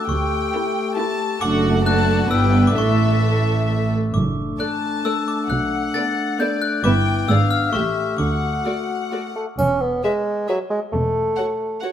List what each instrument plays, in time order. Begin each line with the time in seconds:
Already playing: french horn section A3
0.08 double bass section D2, cello section D2, french horn section G4, violin section G5, glockenspiel C#6
0.53 viola section A3 E4, violin section G4
0.97 viola section A3 E4, violin section G4 A5
1.41 double bass section F#1, cello section F#2, french horn section A3 F#4, viola section A3 D4, violin section F#4 F#5, glockenspiel D6
1.85 viola section A3 D4, violin section F#4 A5, glockenspiel F#6
2.29 double bass section G1, cello section G2, viola section B3 D4, french horn section B3 E4, violin section B4 G5, glockenspiel E6
2.67 glockenspiel D6
2.76 double bass section A1, cello section A2, french horn section A3, viola section A3 A4, violin section E5, glockenspiel C#6
4.13 double bass section F#1, cello section F#2, french horn section A3 D4, glockenspiel D6
4.59 viola section A3 A4, violin section D5 A5, glockenspiel F#6
5.05 viola section A3 A4, violin section D5, glockenspiel E6
5.28 glockenspiel D6
5.50 double bass section B1, cello section B2, violin section F#5, glockenspiel F#6
5.94 viola section B3 A4, violin section D5, glockenspiel A6
6.39 viola section B3 A4, violin section D5, glockenspiel G6
6.62 glockenspiel F#6
6.84 double bass section G1, cello section G2, french horn section B3 E4, viola section B3 B4, violin section E5 G5, glockenspiel D6
7.28 double bass section G#1, cello section G#2, viola section B3 G#4, french horn section D4, violin section D5 F5, glockenspiel E6
7.51 glockenspiel F6
7.73 double bass section A1, cello section A2, french horn section A3 G4, viola section A3 G4, violin section E5, glockenspiel C#6
8.18 double bass section D2, cello section D3, french horn section F#4, violin section F#5, glockenspiel D6
8.65 viola section A3 F#4, violin section D5
9.11 viola section A3 F#4, violin section D5
9.36 bassoon A3
9.58 double bass section E1, cello section E2, bassoon C#4, triangle
9.81 bassoon B3
10.03 bassoon G#3, viola section G#4, violin section B4 E5
10.48 bassoon F#3, viola section G#4, violin section B4 E5
10.70 bassoon G#3
10.92 double bass section E1, cello section E2, bassoon A3
11.36 viola section F#4, violin section C#5 F#5
11.80 viola section F#4, violin section C#5 F#5